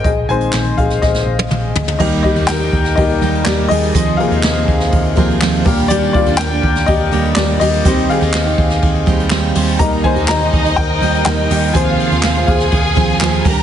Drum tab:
CC |----------------|x---------------|----------------|----------------|
RD |----------------|--xxxxxxxxxxx-xx|xxxxx-xxxxxxxxxx|xxxxxxxxxxxxxxxx|
HH |x-xx-xxx--------|--------------o-|p-------------o-|p-------------o-|
CP |----x-----------|----x-------x---|----x-------x---|----x-------x---|
SD |----o--ooo------|----o--o----o---|----o--o----o---|----o--o----o---|
T1 |-----------o----|----------------|----------------|----------------|
T2 |------------o---|----------------|----------------|----------------|
FT |--------------oo|----------------|----------------|----------------|
BD |o-----o-o-------|o-o---o-o-------|o-----o-o-o---o-|--o---o-o-------|

CC |----------------|----------------|----------------|
RD |xxxxx-xxxxxxxxxx|xxxxxxxx--xxxxxx|xxxxxxxxxxxxx-xx|
HH |p-------------o-|p-------------o-|p-------------o-|
CP |----x-------x---|----x-------x---|----x-------x---|
SD |----o--o----o---|----o--o----o---|----o--o----o---|
T1 |----------------|----------------|----------------|
T2 |----------------|----------------|----------------|
FT |----------------|----------------|----------------|
BD |o-----o-o-o-----|o-o---o-o-------|o-----o-o-o---o-|